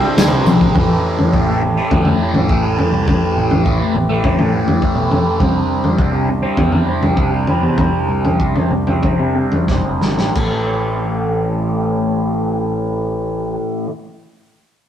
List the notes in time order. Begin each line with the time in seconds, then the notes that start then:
Already playing: D4 E4 G4 C5 E5
0.03 G3 C4
0.17 D2 C3 G3 C4, snare, ride, tambourine
0.32 C2 G3 C4
0.45 B1 C3 G3, high tom, tambourine
0.50 C4
0.61 A1 G3 C4, kick
0.75 A1 A2 E3 C4 E4 G4 A4, kick, floor tom
0.80 A3
1.19 floor tom
1.33 A1 A2 E3 A3, kick
1.47 E3 A3
1.62 muted distorted electric guitar stroke
1.77 E3 A3
1.91 D2 A2 E3 A3, kick, floor tom
2.05 A3, floor tom
2.09 E3
2.20 A2 E3 A3
2.34 A1, floor tom
2.49 A2 E3 A3, kick
2.63 E3 A3
2.78 A2 E3 A3, floor tom
2.92 C2 E3 A3
3.07 A2 E3 A3 B4, kick, floor tom
3.37 A1
3.51 floor tom
3.65 A2 E3 A3, kick
3.80 E3 A3
3.94 A1, muted distorted electric guitar stroke
4.09 E3 A3
4.23 A2 E3 A3, kick, floor tom
4.38 A2 E3 A3, floor tom
4.52 A2 E3 A3
4.68 floor tom
4.82 A2 E3 A3, kick
4.95 B1 E3 A3
5.11 A2 E3 A3, floor tom
5.26 E3 A3
5.39 C2 C3 G3 C4 D4 C5, kick, floor tom
5.84 floor tom
5.98 C2 C3 G3 C4, kick
6.13 G3 C4
6.29 muted distorted electric guitar stroke
6.42 G3 C4
6.56 E2 C3 G3 C4, kick, floor tom
6.72 G3 C4, floor tom
6.87 C3 G3 C4
7.01 C2, floor tom
7.16 C3 G3 C4, kick
7.31 G3 C4
7.47 C3 G3 C4, floor tom
7.62 E2 G3 C4
7.78 C3 G3 C4, kick, floor tom
8.09 C2
8.25 floor tom
8.39 C3 G3 C4, kick
8.55 G3 C4, floor tom
8.71 C2, muted distorted electric guitar stroke
8.87 G3 C4, floor tom
9.03 C3 G3 C4, kick, floor tom
9.19 C3 C4
9.23 G3
9.36 C3 G3 C4
9.52 floor tom
9.68 E1 C3 G3, kick, snare
9.73 C4
9.85 F#1 C4
9.89 G3
10.01 G1 C3 G3, snare
10.05 C4
10.18 A1 C4, snare
10.22 G3
10.35 A1 A2 E3 C4 E4 G4 A4, kick, crash
10.39 A3